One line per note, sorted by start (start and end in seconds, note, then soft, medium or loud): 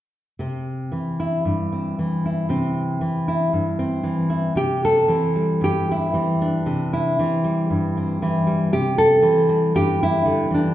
0.39 0.92 C3 soft
0.39 1.72 C4 soft
0.92 1.98 E3 soft
1.20 2.25 E4 soft
1.45 2.46 G2 soft
1.72 2.50 C4 soft
1.99 3.01 E3 soft
2.26 3.27 E4 soft
2.49 3.01 C3 medium
2.49 3.77 C4 soft
3.01 4.02 E3 soft
3.28 4.28 E4 soft
3.53 4.53 G2 soft
3.79 4.54 C4 soft
4.03 4.53 E3 soft
4.30 4.57 E4 soft
4.55 5.08 C3 medium
4.55 4.83 G4 medium
4.85 5.63 A4 medium
5.08 6.13 E3 soft
5.08 6.14 C4 soft
5.35 7.44 G3 soft
5.61 6.62 G2 soft
5.61 5.89 G4 medium
5.91 6.92 E4 medium
6.14 7.19 E3 medium
6.14 6.41 C4 soft
6.42 7.18 D4 medium
6.66 7.18 C3 medium
6.93 8.22 E4 medium
7.19 8.21 E3 medium
7.19 7.97 C4 soft
7.44 8.46 G3 soft
7.70 8.69 G2 medium
7.97 9.22 C4 soft
8.22 8.70 E3 medium
8.22 8.73 E4 soft
8.47 9.49 G3 soft
8.72 9.23 C3 medium
8.72 8.98 G4 medium
8.98 9.74 A4 medium
9.22 10.25 E3 medium
9.22 10.54 C4 soft
9.49 10.74 G3 soft
9.75 10.74 G2 medium
9.75 10.00 G4 loud
10.03 10.74 E4 medium
10.25 10.50 D3 medium
10.51 10.74 E3 medium
10.51 10.74 D4 medium